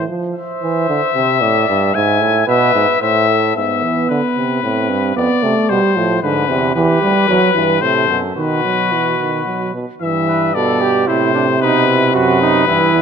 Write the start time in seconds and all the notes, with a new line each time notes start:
0.08 F3
0.34 C5 E5
0.62 E3
0.89 D3
1.15 C3
1.41 A2 D5
1.68 G2
1.93 G#2 E5 G#5
2.21 A2
2.46 B2 B4 E5
2.74 G#2
3.01 A2 C5 E5
3.29 A4
3.55 G#2 B3 E5
3.83 E3
4.10 D3 B4
4.36 C3
4.63 A2 C4
4.89 G2
5.16 F2 B3 D5
5.42 C3 A3
5.69 B2 G3 C5
5.96 A2 F3
6.22 G#2 D3 B4
6.48 E2 C3
6.74 E2 E3 G4 B4
7.01 D2 G3
7.28 E2 F#3 B4
7.54 G2 E3
7.81 A2 C3 A4 C5
8.08 F#2 B2
8.36 B2 D#3 F#4 B4
8.64 F#3
8.92 E3
9.19 D#3
9.46 F#3
9.74 B2
10.01 G2 E3 E5
10.28 B4
10.54 B2 A4 D5
10.81 G4
11.07 A2 C3 E4 C5
11.34 D4
11.60 B2 D#4 B4
11.87 E4
12.14 F#2 F#4 B4
12.41 D#4
12.67 G2 E3 E4
12.93 E2